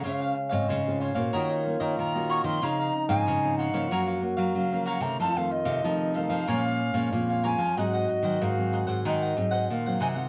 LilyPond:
<<
  \new Staff \with { instrumentName = "Ocarina" } { \time 4/4 \key des \major \tempo 4 = 93 f''8. ees''8. des''4. bes''8 des'''16 c'''16 | bes''8. aes''8. ges''4 r8 f''8 ges''16 bes''16 | a''16 f''16 ees''4 f''16 f''4~ f''16 f''8 aes''8 | ees''4 f''8 r8 ees''4 f''8 aes''16 ges''16 | }
  \new Staff \with { instrumentName = "Cavaquinho" } { \time 4/4 \key des \major <f' c'' des'' f''>16 <c'' des'' f''>16 r16 <c'' des'' f''>16 <f' c'' des'' f''>8 <f' c'' des'' f''>16 <c'' des'' f''>16 <ges' bes' des'' ees''>16 <bes' des'' ees''>16 r16 <bes' des'' ees''>8 <bes' des'' ees''>16 <ges' bes' des'' ees''>16 <bes' des'' ees''>16 | <f' c'' des'' f''>16 <c'' des'' f''>16 r16 <c'' des'' f''>16 <f' c'' des'' f''>8 <f' c'' des'' f''>16 <c'' des'' f''>16 <ges' bes' des'' f''>16 <bes' des'' f''>16 r16 <bes' des'' f''>8 <bes' des'' f''>16 <ges' bes' des'' f''>16 <bes' des'' f''>16 | <ees' a' c'' f''>16 <a' c'' f''>16 r16 <a' c'' f''>16 <ees' a' c'' f''>8 <ees' a' c'' f''>16 <a' c'' f''>16 <bes' des'' f'' aes''>16 <des'' f'' aes''>16 r16 <des'' f'' aes''>8 <des'' f'' aes''>16 <bes' des'' f'' aes''>16 <des'' f'' aes''>16 | <ees' aes' c'' ges''>16 <aes' c'' ges''>16 r16 <aes' c'' ges''>16 <ees' aes' c''>8 <ees' aes' c'' ges''>16 <aes' c'' ges''>16 <ees' aes' c'' ges''>16 <aes' c'' ges''>16 r16 <aes' c'' ges''>8 <aes' c'' ges''>16 <ees' aes' c'' ges''>16 <aes' c'' ges''>16 | }
  \new Staff \with { instrumentName = "Trombone" } { \time 4/4 \key des \major des'2 f'2 | ees'2 ges'4. r8 | f'4 ees'4 des'4 f'4 | ges'2.~ ges'8 r8 | }
  \new Staff \with { instrumentName = "Nylon-string guitar" } { \time 4/4 \key des \major << { <aes f'>8. <aes c' f'>8 <aes c' f'>8 <bes des' ges'>8. <bes des'>8 r16 <bes des' ges'>8 <f c' ees'>16~ | <f c' ees'>8. <f c' ees'>8 <f c' ees'>8 <f bes des'>8. <bes des'>8. <f bes des'>8 <ees a c'>16~ | <ees a c'>16 <ees a c'>8. <ees a c'>8 <ees a c'>16 r16 <f aes des'>8 r16 <f aes des'>8. <f aes des'>16 r16 | <ges c' ees'>8. <ges c' ees'>8 <ges c' ees'>4 r16 <ges c' ees'>8 r16 <ges c' ees'>8 <aes c' f'>16 | } \\ { des4 aes,4 ees4 bes,4 | des4 aes,4 ges,4 des4 | f,4 c4 bes,4 f,4 | aes,4 ees4 aes,4 ees4 | } >> }
  \new Staff \with { instrumentName = "Nylon-string guitar" } { \clef bass \time 4/4 \key des \major des8 r16 aes,16 des8. bes,16 ees8. ees16 ees8. ees16 | des8 r16 aes,16 des8. des16 ges8. ges16 ges8. c16 | f8 r16 c16 f8. f16 bes,8. bes,16 bes,8. f16 | aes,8 r16 ees16 aes,8. aes,16 ees8 aes,8 bes,8 c8 | }
>>